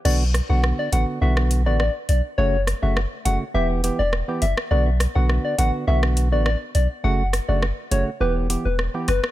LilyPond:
<<
  \new Staff \with { instrumentName = "Soft synth lead" } { \time 4/4 \key b \minor \tempo 4 = 103 d''16 r8 fis''16 r16 d''16 fis''16 r16 e''16 r8 d''16 d''16 r16 d''16 r16 | cis''8 r16 e''16 r8 fis''16 r16 e''16 r8 d''16 r8 e''16 r16 | d''16 r8 fis''16 r16 d''16 fis''16 r16 e''16 r8 d''16 d''16 r16 d''16 r16 | fis''8 r16 d''16 r8 cis''16 r16 b'16 r8 b'16 r8 b'16 r16 | }
  \new Staff \with { instrumentName = "Synth stab" } { \time 4/4 \key b \minor <d b fis'>16 r8 <d b fis'>8. <d b fis'>8 <d b fis'>8. <d b fis'>16 r4 | <cis a fis'>16 r8 <cis a fis'>16 r8 <cis a fis'>16 r16 <e b g'>8 <e b g'>16 r8 <e b g'>16 r8 | <d b fis'>16 r8 <d b fis'>8. <d b fis'>8 <d b fis'>8. <d b fis'>16 r4 | <cis a fis'>16 r8 <cis a fis'>16 r8 <cis a fis'>16 r16 <e b g'>8 <e b g'>16 r8 <e b g'>16 r8 | }
  \new Staff \with { instrumentName = "Sub bass" } { \clef bass \time 4/4 \key b \minor b,,8. b,,8 r16 a,,16 r16 b,,8. a,,8 r16 b,,16 r16 | fis,,8. fis,,8 r16 fis,,16 r16 e,,8. e,,8 r16 fis,,16 r16 | b,,8. b,,8 r16 a,,16 r16 b,,8. a,,8 r16 b,,16 r16 | fis,,8. fis,,8 r16 fis,,16 r16 e,,8. e,,8 r16 fis,,16 r16 | }
  \new DrumStaff \with { instrumentName = "Drums" } \drummode { \time 4/4 cymc8 <hh ss>8 ss8 hh8 r16 ss16 hh8 ss8 hh8 | r8 <hh ss>8 ss8 hh8 r8 hh8 ss8 hh16 ss16 | r8 <hh ss>8 ss8 hh8 r16 ss16 hh8 ss8 hh8 | r8 <hh ss>8 ss8 hh8 r8 hh8 ss8 <hh ss>16 ss16 | }
>>